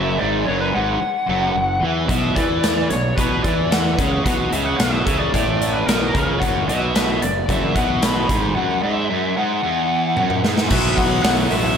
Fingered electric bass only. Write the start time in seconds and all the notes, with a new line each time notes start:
Already playing: F#1
0.22 G#1
0.49 F#1
0.76 G#1
1.02 muted fingered electric bass stroke
1.29 F#1
1.55 F#1
1.82 E2
2.09 B1
2.37 E2
2.91 B1
3.18 B1
3.44 E2
3.99 C#2
4.26 B1
4.53 C#2
4.80 B1
5.07 C#2
5.34 A1
5.88 B1
6.15 C#2
6.42 F#1
6.69 B1
7.22 F#1
7.49 F#1
7.76 B1
8.29 G#1
10.71 B1
10.98 B1
11.24 B1
11.51 A1